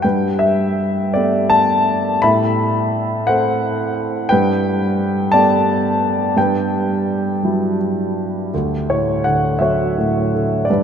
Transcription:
0.02 G2 B4 G5
0.39 E5
1.14 A3 B3 G4 D5
1.50 A5
2.22 A2 E5 B5
3.27 A3 C4 A4 C5 F#5
4.29 G2 B4 G5
5.32 A3 B3 G4 D5 A5
6.37 G2 B4 G5
7.43 F#3 G3 E4
8.54 D2
8.90 A2 C#5
9.24 D3 F#5
9.59 F#3 C#5 E5
9.98 A2
10.34 D3
10.65 D5
10.70 G2 B4

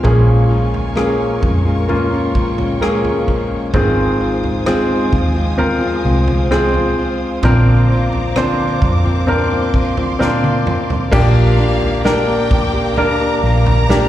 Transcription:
Already playing: F5
0.03 A#1 A#2 F3 G#3 A#3 C#4 F4 G#4 A#4 G#5 C#6, kick, floor tom
0.49 F3 G#3 C#4 F4
0.74 floor tom
0.95 A#2 F3 G#3 A#3 C#4 F4 G#4, cross-stick
1.41 F2 F3 G#3 C#4 F4, kick, floor tom
1.65 G#3 C#4 F4
1.88 A#3 C#4 F4 G5, floor tom
2.11 G#3 C#4 F4
2.35 F3 G#3 C#4 F4, kick
2.58 G#3 C#4 F4, floor tom
2.81 A#2 F3 G#3 A#3 C#4 F4 G#4, cross-stick
3.04 G#3 C#4 F4, floor tom
3.26 F3 G#3 C#4 F4, kick
3.73 G#1 G#2 D#3 F3 G#3 C4 F4 G#4 C5 F5 G#5 D#6, kick, floor tom
4.19 F3 G#3 C4 F4
4.44 floor tom
4.66 G#2 D#3 F3 G#3 C4 F4 G#4, cross-stick
5.12 D#2 F3 G#3 C4 F4, kick, floor tom
5.35 F3 G#3 C4 F4
5.58 C4 F4 A#4, floor tom
5.81 F3 G#3 C4 F4
6.04 C2 F3 G#3 C4 F4
6.28 F3 G#3 C4 F4, floor tom
6.51 G#2 D#3 F3 G#3 C4 F4 G#4, cross-stick
6.74 F3 G#3 C4 F4, floor tom
6.97 F3 G#3 C4 F4
7.43 A#1 A#2 D3 F3 A#3 C4 D4 F4 A#4 A#5 D6, kick, floor tom
7.90 F3 A#3 C4 F4
8.13 floor tom
8.36 A#2 D3 F3 A#3 C4 D4 F4 C5, cross-stick
8.82 F2 F3 A#3 C4 F4, kick, floor tom
9.05 F3 A#3 C4 F4
9.27 C4 D4 A#4 C6, floor tom
9.50 F3 A#3 C4 F4
9.73 F3 A#3 C4 F4, kick
9.96 F3 A#3 C4 F4, floor tom
10.19 A#2 D3 F3 A#3 C4 D4 F4 A#4, snare
10.44 high tom
10.66 F3 A#3 C4 F4, mid tom
10.90 floor tom
11.11 A#1 A#2 F3 A#3 D4 G4 A#4 F5 A#5 D6, kick, floor tom, crash
11.58 F3 A#3 D4 G4
11.82 floor tom
12.04 A#2 F3 A#3 D4 G4 A#4 G5, snare
12.27 A#3 D4 G4
12.50 F3 A#3 D4 G4, kick, floor tom
12.74 A#3 D4 G4
12.97 A#3 D4 A#4 A#5, floor tom
13.20 A#3 D4 G4
13.43 A#1 F3 A#3 D4 G4 A#5
13.66 floor tom
13.89 A#2 F3 A#3 D4 G4, snare

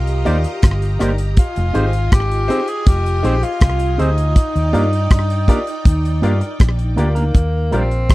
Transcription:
Already playing: C2 F4 G4 D#5 A#5
0.07 closed hi-hat
0.25 D#2 A#3 D#4 G4 A#4 C5 D5, closed hi-hat
0.44 muted clean electric guitar stroke, closed hi-hat
0.62 G1, kick, cross-stick, closed hi-hat
0.82 closed hi-hat
0.99 G1 A#3 D#4 G4 A#4 C5 D5, cross-stick, closed hi-hat
1.18 closed hi-hat
1.37 F4 D#5 G#5, kick, closed hi-hat
1.56 F1, closed hi-hat
1.73 G#1 C4 D#4 G4 G#4 C5, closed hi-hat
1.93 closed hi-hat
2.12 G#1 G4, kick, cross-stick, closed hi-hat
2.31 closed hi-hat
2.48 C4 D#4 G4 G#4 C5, closed hi-hat
2.68 G#4, closed hi-hat
2.86 F1 G4, kick, closed hi-hat
3.06 closed hi-hat
3.23 A#1 C4 D#4 G4 G#4 C5, closed hi-hat
3.43 F4 G#4 C5, muted clean electric guitar stroke, closed hi-hat
3.61 C2, kick, cross-stick, closed hi-hat
3.79 closed hi-hat
3.98 D2 C4 D#4 G4 G#4 C5, closed hi-hat
4.18 closed hi-hat
4.36 D#4 D5 G5, kick, closed hi-hat
4.56 D#2, closed hi-hat
4.73 G2 A#3 D4 F4 G4 A#4 D5, closed hi-hat
4.93 closed hi-hat
5.11 G2, kick, cross-stick, closed hi-hat
5.30 closed hi-hat
5.48 A#3 D4 F4 G4 A#4 D5, kick, closed hi-hat
5.67 closed hi-hat
5.85 D#2, kick, closed hi-hat
6.05 closed hi-hat
6.21 G2 A#3 D4 F4 G4 A#4 D5, closed hi-hat
6.41 A#4 D5, muted clean electric guitar stroke, closed hi-hat
6.60 A#1, kick, cross-stick, closed hi-hat
6.79 closed hi-hat
6.96 D2 A#3 D4 F4 G4 A#4 D5, closed hi-hat
7.00 A#3
7.15 A#3 D4 G4 A#4, closed hi-hat
7.34 D#2, kick, closed hi-hat
7.71 A#1 G3 D4 F4 G4 A#4 D5, closed hi-hat
7.76 C4
7.91 closed hi-hat
8.10 D2, kick, cross-stick, closed hi-hat

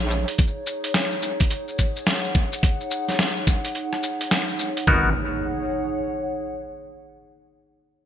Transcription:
Already playing: A#1 D#4 G#4 C#5 F5
0.00 shaker
0.10 shaker
0.28 closed hi-hat, shaker
0.38 kick, closed hi-hat, shaker
0.47 shaker
0.66 shaker
0.84 closed hi-hat, shaker
0.94 snare, closed hi-hat, shaker
1.12 shaker
1.22 shaker
1.40 F#5, kick, closed hi-hat, shaker
1.50 closed hi-hat, shaker
1.68 shaker
1.79 kick, shaker
1.96 shaker
2.07 snare, closed hi-hat, shaker
2.25 shaker
2.35 kick
2.53 shaker
2.63 kick, closed hi-hat, shaker
2.81 shaker
2.91 shaker
3.08 snare, closed hi-hat, shaker
3.19 snare, closed hi-hat, shaker
3.37 shaker
3.47 kick, shaker
3.65 closed hi-hat, shaker
3.75 closed hi-hat, shaker
3.93 cross-stick
4.03 shaker
4.21 closed hi-hat, shaker
4.31 snare, closed hi-hat, shaker
4.49 shaker
4.59 shaker
4.77 closed hi-hat, shaker
4.87 G#1 B3 D#4 F#4 A#4, kick, impact
4.98 G#4
5.06 C#5
5.13 F#5

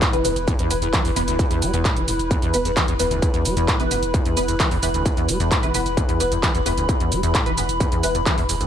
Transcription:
Already playing: E4 B4 B5
0.02 A2, kick, clap, closed hi-hat, shaker
0.13 E1 E3 B3 B4, closed hi-hat, shaker
0.25 E1 E2 E3 B3 B4, open hi-hat, shaker
0.36 E1, closed hi-hat, shaker
0.48 E2, kick, closed hi-hat, shaker
0.59 E2, closed hi-hat, shaker
0.71 E1 D2 E3 B3 B4, open hi-hat, shaker
0.82 E1 E2, closed hi-hat, shaker
0.93 E3, kick, clap, closed hi-hat, shaker
1.05 E1 E2, open hi-hat, shaker
1.16 E1 E2 E3 B3 B4, open hi-hat, shaker
1.28 E1 D2, closed hi-hat, shaker
1.39 E2, kick, closed hi-hat, shaker
1.51 E2, closed hi-hat, shaker
1.62 E1 G3, open hi-hat, shaker
1.74 E1 E2 E3 B3 B4, closed hi-hat, shaker
1.85 A2, kick, clap, closed hi-hat, shaker
1.97 E1 E3, closed hi-hat, shaker
2.08 E1 E2, open hi-hat, shaker
2.19 E1, closed hi-hat, shaker
2.31 E2, kick, closed hi-hat, shaker
2.42 E2, closed hi-hat, shaker
2.54 E1 D2 E3 B3 B4, open hi-hat, shaker
2.65 E1 E2, closed hi-hat, shaker
2.77 E3, kick, clap, closed hi-hat, shaker
2.88 E1 E2, closed hi-hat, shaker
3.00 E1 E2 E3 B3 B4, open hi-hat, shaker
3.11 E1 D2, closed hi-hat, shaker
3.22 E2, kick, closed hi-hat, shaker
3.34 E2, closed hi-hat, shaker
3.45 E1 G3, open hi-hat, shaker
3.57 E1 E2, closed hi-hat, shaker
3.68 A2, kick, clap, closed hi-hat, shaker
3.80 E1 E3 B3 B4, closed hi-hat, shaker
3.91 E1 E2 E3 B3 B4, open hi-hat, shaker
4.03 E1, closed hi-hat, shaker
4.14 E2, kick, closed hi-hat, shaker
4.26 E2, closed hi-hat, shaker
4.37 E1 D2 E3 B3 B4, open hi-hat, shaker
4.48 E1 E2, closed hi-hat, shaker
4.60 E3, kick, clap, closed hi-hat, shaker
4.71 E1 E2, open hi-hat, shaker
4.83 E1 E2 E3 B3 B4, open hi-hat, shaker
4.94 E1 D2, closed hi-hat, shaker
5.06 E2, kick, closed hi-hat, shaker
5.17 E2, closed hi-hat, shaker
5.29 E1 G3, open hi-hat, shaker
5.40 E1 E2, closed hi-hat, shaker
5.51 A2, kick, clap, closed hi-hat, shaker
5.63 E1 E3 B3 B4, closed hi-hat, shaker
5.74 E1 E2 E3 B3 B4, open hi-hat, shaker
5.86 E1, closed hi-hat, shaker
5.97 E2, kick, closed hi-hat, shaker
6.09 E2, closed hi-hat, shaker
6.20 E1 D2 E3 B3 B4, open hi-hat, shaker
6.32 E1 E2, closed hi-hat, shaker
6.43 E3, kick, clap, closed hi-hat, shaker
6.55 E1 E2, closed hi-hat, shaker
6.66 E1 E2 E3 B3 B4, open hi-hat, shaker
6.77 E1 D2, closed hi-hat, shaker
6.89 E2, kick, closed hi-hat, shaker
7.00 E2, closed hi-hat, shaker
7.12 E1 G3, open hi-hat, shaker
7.23 E1 E2, closed hi-hat, shaker
7.35 A2, kick, clap, closed hi-hat, shaker
7.46 E1 E3 B3 B4, closed hi-hat, shaker
7.58 E1 E2 E3 B3 B4, open hi-hat, shaker
7.69 E1, closed hi-hat, shaker
7.80 E2, kick, closed hi-hat, shaker
7.92 E2, closed hi-hat, shaker
8.03 E1 D2 E3 B3 B4, open hi-hat, shaker
8.15 E1 E2, closed hi-hat, shaker
8.26 E3, kick, clap, closed hi-hat, shaker
8.38 E1 E2, open hi-hat, shaker
8.49 E1 E2, open hi-hat, shaker
8.61 E1 D2, closed hi-hat, shaker

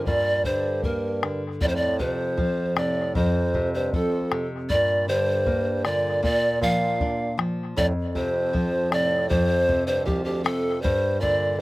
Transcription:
0.06 G2 A#2 D5, bombo low
0.44 G2 D3 C5, bombo low
0.83 G2 A#3 A#4, bombo low
1.23 D3, bombo rim
1.61 F2 A2 D5, bombo low
1.68 A2 C5
1.76 A2 D5
1.99 F2 C3 C5, bombo low
2.37 F3, bombo low
2.76 A2 C3 D5, bombo rim
3.15 F2 C5, bombo low
3.54 C3, bombo low
3.75 G2 C5
3.93 F2 F3 A4, bombo low
4.32 C3, bombo rim
4.70 G2 A#2 D5, bombo low
5.08 G2 D3 C5
5.46 A#3, bombo low
5.85 A#2 D3 D5, bombo rim
6.23 A#2 D5, bombo low
6.61 A#2 F3 F5, bombo low
7.00 D4, bombo low
7.38 F3, bombo rim
7.77 F2 A2 D5, bombo low
8.15 F2 C3 C5, bombo low
8.53 F3, bombo low
8.91 A2 C3 D5, bombo rim
9.29 F2 C5, bombo low
9.69 C3, bombo low
9.86 G2 C5
10.06 C2 F3 G4, bombo low
10.25 D2 G4
10.44 F2 C3 A4, bombo rim
10.82 G2 C5, bombo low
11.20 A#2 D3 D5, bombo low

